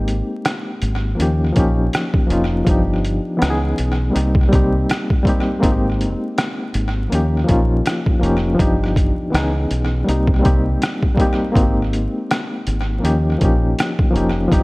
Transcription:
Already playing: fingered electric bass G#1, reed electric piano G#3 A#3 C4 D#4 G4
0.08 closed hi-hat
0.45 cross-stick, closed hi-hat
0.82 fingered electric bass G#1, closed hi-hat
1.15 reed electric piano F3 A#3 C#4
1.19 fingered electric bass D#2, reed electric piano D#4 G4, closed hi-hat
1.53 reed electric piano F3 A#3 C#4, kick, closed hi-hat
1.57 fingered electric bass A#1, reed electric piano D#4 G4
1.93 cross-stick, closed hi-hat
2.14 kick
2.27 fingered electric bass F1, reed electric piano F3 A#3 C#4, closed hi-hat
2.32 reed electric piano D#4 F4
2.65 fingered electric bass G1, reed electric piano F3 B3 D4, kick, closed hi-hat
2.69 reed electric piano D#4 G4
3.04 closed hi-hat
3.37 reed electric piano E3 B3 C#4
3.42 fingered electric bass C#2, reed electric piano D#4 F#4, cross-stick, closed hi-hat
3.50 reed electric piano G#4
3.78 fingered electric bass B1, closed hi-hat
4.10 reed electric piano G3 A#3 C4
4.15 fingered electric bass C2, reed electric piano D#4 G4, closed hi-hat
4.35 kick
4.49 reed electric piano G3 A#3 C4, closed hi-hat
4.53 fingered electric bass C2, reed electric piano D#4 G4, kick
4.89 cross-stick, closed hi-hat
5.10 kick
5.23 reed electric piano G3 A#3 C4, kick, closed hi-hat
5.28 reed electric piano D#4 G4
5.59 reed electric piano G#3 A#3 C4
5.63 fingered electric bass G#1, reed electric piano D#4 F4, kick, closed hi-hat
5.72 reed electric piano G4
6.01 closed hi-hat
6.38 cross-stick, closed hi-hat
6.74 fingered electric bass G#1, closed hi-hat
7.08 fingered electric bass D#2, reed electric piano F3 A#3 C#4
7.12 reed electric piano D#4 G4, closed hi-hat
7.45 reed electric piano F3 A#3 C#4
7.49 fingered electric bass A#1, reed electric piano D#4 F4, kick, closed hi-hat
7.86 cross-stick, closed hi-hat
8.06 kick
8.19 fingered electric bass F1, reed electric piano F3 A#3 C#4, closed hi-hat
8.24 reed electric piano D#4 G4
8.54 reed electric piano F3 B3 D4
8.59 fingered electric bass G1, reed electric piano D#4 G4, kick, closed hi-hat
8.84 cross-stick
8.96 kick, closed hi-hat
9.30 fingered electric bass C#2, reed electric piano E3 B3 C#4
9.35 reed electric piano D#4 G#4, cross-stick, closed hi-hat
9.71 fingered electric bass B1, closed hi-hat
10.04 fingered electric bass C2, reed electric piano G3 A#3 C4
10.09 reed electric piano D#4 G4, closed hi-hat
10.27 kick
10.39 reed electric piano G3 A#3 C4
10.44 fingered electric bass C2, reed electric piano D#4 G4, kick, closed hi-hat
10.82 cross-stick, closed hi-hat
11.03 kick
11.15 reed electric piano G3 A#3 C4, kick
11.20 reed electric piano D#4 G4, closed hi-hat
11.50 reed electric piano G#3 A#3 C4
11.55 fingered electric bass G#1, reed electric piano D#4 F#4, kick, closed hi-hat
11.63 reed electric piano G4
11.93 closed hi-hat
12.31 cross-stick, closed hi-hat
12.67 fingered electric bass G#1, closed hi-hat
12.99 reed electric piano F3 A#3 C#4
13.04 fingered electric bass D#2, reed electric piano D#4 G4, closed hi-hat
13.38 fingered electric bass A#1, reed electric piano F3 A#3 C#4, kick, closed hi-hat
13.43 reed electric piano D#4 G4
13.79 cross-stick, closed hi-hat
13.99 kick
14.11 reed electric piano F3 A#3 C#4
14.15 fingered electric bass F1, reed electric piano D#4 G4, closed hi-hat
14.48 reed electric piano F3 B3 D4, kick
14.52 fingered electric bass G1, reed electric piano D#4 G4, closed hi-hat

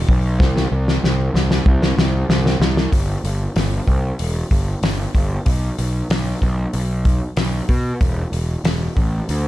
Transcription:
0.09 picked electric bass B1, kick
0.40 picked electric bass C2, kick, snare
0.57 snare
0.72 picked electric bass C2
0.88 snare
1.04 picked electric bass C2, snare
1.34 picked electric bass C2, snare
1.51 snare
1.66 picked electric bass C2, kick
1.82 snare
1.98 picked electric bass C2, snare
2.29 picked electric bass C2, snare
2.46 snare
2.60 picked electric bass C2, snare
2.77 snare
2.92 picked electric bass G1, kick, open hi-hat
3.24 picked electric bass G1, open hi-hat
3.56 picked electric bass G1, snare, open hi-hat
3.88 picked electric bass C2, kick, open hi-hat
4.19 picked electric bass E1, open hi-hat
4.51 picked electric bass G1, kick, open hi-hat
4.83 picked electric bass G1, snare, open hi-hat
5.15 picked electric bass G1, kick, open hi-hat
5.46 picked electric bass B1, kick, open hi-hat
5.78 picked electric bass B1, open hi-hat
6.10 picked electric bass B1, snare, open hi-hat
6.42 picked electric bass B1, kick, open hi-hat
6.73 picked electric bass B1, open hi-hat
7.05 kick, open hi-hat
7.37 picked electric bass B1, snare, open hi-hat
7.69 picked electric bass B2, kick, open hi-hat
8.01 picked electric bass E1, kick, open hi-hat
8.32 picked electric bass E1, open hi-hat
8.64 picked electric bass E1, snare, open hi-hat
8.96 picked electric bass A1, kick, open hi-hat
9.29 picked electric bass D2, open hi-hat

